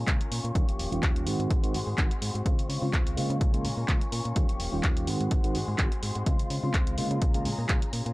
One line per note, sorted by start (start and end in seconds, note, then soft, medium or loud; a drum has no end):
0.00 0.55 A#4 medium
0.00 0.55 G#5 medium
0.00 1.25 C#6 medium
0.06 0.16 A#1 loud
0.06 0.16 C#3 medium
0.06 0.20 G#3 medium
0.06 0.16 G#3 medium
0.06 0.16 A#3 medium
0.06 0.16 F4 loud
0.06 kick loud
0.06 clap loud
0.06 closed hi-hat medium
0.19 0.45 C#4 soft
0.19 0.42 F4 medium
0.19 closed hi-hat soft
0.31 0.40 A#2 medium
0.31 open hi-hat loud
0.43 0.52 A#2 medium
0.43 0.54 C#4 soft
0.43 0.55 F4 medium
0.43 closed hi-hat soft
0.54 0.64 D#2 loud
0.54 0.64 D#3 medium
0.54 0.91 F3 medium
0.54 0.64 G3 medium
0.54 0.92 A#3 medium
0.54 0.64 C#4 medium
0.54 0.91 C#4 loud
0.54 0.64 F4 loud
0.54 1.26 G4 medium
0.54 1.26 F5 medium
0.54 kick loud
0.54 closed hi-hat medium
0.68 0.77 D#1 soft
0.68 closed hi-hat soft
0.79 0.88 D#1 medium
0.79 open hi-hat loud
0.91 1.00 D#1 medium
0.91 1.24 D#3 medium
0.91 1.24 G3 medium
0.91 1.02 A#3 medium
0.91 1.24 C#4 medium
0.91 1.02 C#4 medium
0.91 1.24 F4 medium
0.91 1.02 G4 medium
0.91 closed hi-hat soft
1.02 1.28 D#2 medium
1.02 1.25 F3 medium
1.02 1.26 A#3 medium
1.02 1.27 G4 loud
1.02 kick loud
1.02 clap loud
1.02 closed hi-hat medium
1.16 closed hi-hat soft
1.25 1.36 G#2 medium
1.25 1.63 D#3 medium
1.25 1.60 D#3 medium
1.25 1.60 G#3 medium
1.25 1.63 G#3 medium
1.25 1.60 C4 medium
1.25 1.63 C4 medium
1.25 1.60 F#4 medium
1.25 1.61 F#4 medium
1.25 2.45 G#4 medium
1.25 2.45 F#5 medium
1.25 2.45 C6 medium
1.25 open hi-hat loud
1.39 1.47 G#2 medium
1.39 closed hi-hat soft
1.50 1.76 G#1 medium
1.50 kick loud
1.50 closed hi-hat medium
1.62 1.75 D#3 medium
1.62 1.75 G#3 medium
1.62 1.73 G#3 soft
1.62 1.75 C4 medium
1.62 1.74 C4 medium
1.62 1.74 F#4 medium
1.62 1.76 F#4 loud
1.62 closed hi-hat soft
1.73 1.83 G#2 medium
1.73 1.96 D#3 medium
1.73 1.97 G#3 medium
1.73 1.97 C4 medium
1.73 1.98 F#4 medium
1.73 open hi-hat loud
1.87 1.95 G#2 medium
1.97 2.07 G#1 loud
1.97 2.11 D#3 medium
1.97 2.07 D#3 medium
1.97 2.07 G#3 medium
1.97 2.07 C4 medium
1.97 2.07 F#4 loud
1.97 kick loud
1.97 clap loud
1.97 closed hi-hat medium
2.10 2.36 G#3 soft
2.10 2.34 C4 medium
2.10 2.32 F#4 medium
2.10 closed hi-hat soft
2.22 2.31 G#2 loud
2.22 open hi-hat loud
2.34 2.42 G#2 medium
2.34 2.44 G#3 medium
2.34 2.45 C4 medium
2.34 2.45 F#4 medium
2.34 closed hi-hat soft
2.45 2.55 C#2 loud
2.45 2.54 C#3 medium
2.45 2.82 G#3 medium
2.45 2.55 G#3 medium
2.45 3.40 C4 medium
2.45 2.55 C4 medium
2.45 2.83 C4 medium
2.45 2.55 F4 loud
2.45 2.80 F4 medium
2.45 3.40 F5 medium
2.45 3.40 C#6 medium
2.45 kick loud
2.45 closed hi-hat medium
2.58 2.67 C#3 soft
2.58 closed hi-hat soft
2.69 2.78 C#3 medium
2.69 open hi-hat loud
2.81 2.90 C#3 medium
2.81 3.14 C#3 medium
2.81 3.14 G#3 medium
2.81 3.15 C4 medium
2.81 2.92 C4 soft
2.81 2.93 F4 medium
2.81 3.15 F4 medium
2.92 3.18 C#2 medium
2.92 3.15 G#3 medium
2.92 3.16 C4 medium
2.92 3.18 F4 loud
2.92 kick loud
2.92 clap loud
2.92 closed hi-hat medium
3.07 closed hi-hat soft
3.16 3.26 C#3 medium
3.16 3.51 C#3 medium
3.16 3.39 G#3 medium
3.16 3.51 G#3 medium
3.16 3.51 A#3 medium
3.16 3.41 C4 medium
3.16 3.51 F4 medium
3.16 3.41 F4 medium
3.16 open hi-hat loud
3.30 3.37 C#3 medium
3.30 closed hi-hat soft
3.40 3.66 A#1 medium
3.40 3.53 G#3 medium
3.40 3.54 C#4 medium
3.40 3.52 F4 medium
3.40 4.35 A#4 medium
3.40 4.35 G#5 medium
3.40 5.06 C#6 medium
3.40 kick loud
3.40 closed hi-hat medium
3.53 3.66 C#3 medium
3.53 3.66 G#3 medium
3.53 3.66 A#3 medium
3.53 3.64 C#4 medium
3.53 3.64 F4 medium
3.53 3.66 F4 loud
3.53 closed hi-hat soft
3.64 3.73 A#2 medium
3.64 3.87 G#3 medium
3.64 3.88 C#4 medium
3.64 3.89 F4 medium
3.64 open hi-hat loud
3.77 3.85 A#2 medium
3.88 3.97 A#1 loud
3.88 3.97 C#3 medium
3.88 4.01 G#3 medium
3.88 3.97 G#3 medium
3.88 3.97 A#3 medium
3.88 3.98 F4 loud
3.88 kick loud
3.88 clap loud
3.88 closed hi-hat medium
4.01 4.26 C#4 soft
4.01 4.23 F4 medium
4.01 closed hi-hat soft
4.12 4.21 A#2 loud
4.12 open hi-hat loud
4.24 4.33 A#2 medium
4.24 4.36 C#4 soft
4.24 4.36 F4 medium
4.24 closed hi-hat soft
4.35 4.45 D#2 loud
4.35 4.45 D#3 medium
4.35 4.73 F3 medium
4.35 4.45 G3 medium
4.35 4.73 A#3 medium
4.35 4.45 C#4 medium
4.35 4.73 C#4 medium
4.35 4.45 F4 loud
4.35 5.07 G4 medium
4.35 4.71 G4 loud
4.35 5.07 F5 medium
4.35 kick loud
4.35 closed hi-hat medium
4.49 4.58 D#1 soft
4.49 closed hi-hat soft
4.60 4.69 D#1 medium
4.60 open hi-hat loud
4.72 4.80 D#1 medium
4.72 5.05 D#3 medium
4.72 5.05 G3 medium
4.72 4.83 A#3 soft
4.72 5.05 C#4 medium
4.72 4.83 C#4 medium
4.72 5.05 F4 medium
4.72 4.83 G4 medium
4.83 5.09 D#2 medium
4.83 5.06 F3 medium
4.83 5.08 G4 loud
4.83 kick loud
4.83 clap loud
4.83 closed hi-hat medium
4.97 closed hi-hat soft
5.07 5.16 G#2 medium
5.07 5.44 D#3 medium
5.07 5.41 D#3 medium
5.07 5.41 G#3 medium
5.07 5.45 G#3 medium
5.07 5.41 C4 medium
5.07 5.44 C4 medium
5.07 5.41 F#4 medium
5.07 5.42 F#4 medium
5.07 6.25 G#4 medium
5.07 6.25 F#5 medium
5.07 7.20 C6 medium
5.07 open hi-hat loud
5.21 5.28 G#2 medium
5.21 closed hi-hat soft
5.31 5.57 G#1 medium
5.31 kick loud
5.31 closed hi-hat medium
5.43 5.56 D#3 medium
5.43 5.56 G#3 medium
5.43 5.54 G#3 soft
5.43 5.56 C4 medium
5.43 5.55 C4 medium
5.43 5.55 F#4 medium
5.43 5.56 F#4 medium
5.43 closed hi-hat soft
5.54 5.64 G#2 medium
5.54 5.77 D#3 medium
5.54 5.78 G#3 medium
5.54 5.79 C4 medium
5.54 5.79 F#4 medium
5.54 open hi-hat loud
5.68 5.76 G#2 medium
5.78 5.88 G#1 loud
5.78 5.87 D#3 loud
5.78 5.92 D#3 medium
5.78 5.88 G#3 medium
5.78 5.88 C4 medium
5.78 5.88 F#4 loud
5.78 kick loud
5.78 clap loud
5.78 closed hi-hat medium
5.91 6.17 G#3 soft
5.91 6.15 C4 medium
5.91 6.14 F#4 medium
5.91 closed hi-hat soft
6.03 6.12 G#2 medium
6.03 open hi-hat loud
6.15 6.23 G#2 medium
6.15 6.25 G#3 soft
6.15 6.26 C4 medium
6.15 6.26 F#4 medium
6.15 closed hi-hat soft
6.26 6.36 C#2 medium
6.26 6.35 C#3 medium
6.26 6.63 G#3 medium
6.26 6.35 G#3 medium
6.26 6.36 C4 medium
6.26 6.64 C4 medium
6.26 7.21 F4 medium
6.26 6.36 F4 loud
6.26 6.61 F4 loud
6.26 kick loud
6.26 closed hi-hat medium
6.39 6.48 C#3 soft
6.39 closed hi-hat medium
6.50 6.59 C#3 medium
6.50 open hi-hat loud
6.62 6.95 C#3 medium
6.62 6.71 C#3 medium
6.62 6.95 G#3 medium
6.62 6.96 C4 medium
6.62 6.74 C4 soft
6.62 6.74 F4 medium
6.62 6.96 F4 medium
6.62 shaker medium
6.74 6.99 C#2 medium
6.74 6.96 G#3 medium
6.74 kick loud
6.74 clap loud
6.74 closed hi-hat medium
6.87 closed hi-hat medium
6.97 7.07 C#3 medium
6.97 7.32 C#3 medium
6.97 7.10 G#3 medium
6.97 7.32 G#3 medium
6.97 7.32 A#3 medium
6.97 7.11 C4 medium
6.97 7.32 F4 loud
6.97 7.09 F4 medium
6.97 open hi-hat loud
7.10 7.18 C#3 medium
7.10 7.22 C4 soft
7.10 7.21 F4 medium
7.10 closed hi-hat soft
7.21 7.47 A#1 medium
7.21 7.34 G#3 medium
7.21 7.35 C#4 medium
7.21 7.32 F4 medium
7.21 8.13 G#4 medium
7.21 8.13 A#5 medium
7.21 kick loud
7.21 closed hi-hat medium
7.34 7.46 C#3 medium
7.34 7.47 G#3 medium
7.34 7.47 A#3 medium
7.34 7.45 C#4 medium
7.34 7.45 F4 medium
7.34 7.47 F4 loud
7.34 closed hi-hat medium
7.45 7.54 A#2 medium
7.45 7.68 G#3 medium
7.45 7.69 C#4 medium
7.45 7.70 F4 medium
7.45 open hi-hat loud
7.58 7.66 A#2 medium
7.69 7.78 A#1 loud
7.69 7.78 C#3 loud
7.69 7.82 G#3 medium
7.69 7.78 G#3 medium
7.69 7.78 A#3 medium
7.69 7.78 F4 loud
7.69 7.80 F4 loud
7.69 kick loud
7.69 clap loud
7.69 closed hi-hat medium
7.82 8.07 C#4 soft
7.82 8.04 F4 medium
7.82 closed hi-hat medium
7.93 8.02 A#2 medium
7.93 open hi-hat medium
8.05 8.13 A#2 medium
8.05 8.13 C#4 soft
8.05 8.13 F4 medium
8.05 closed hi-hat soft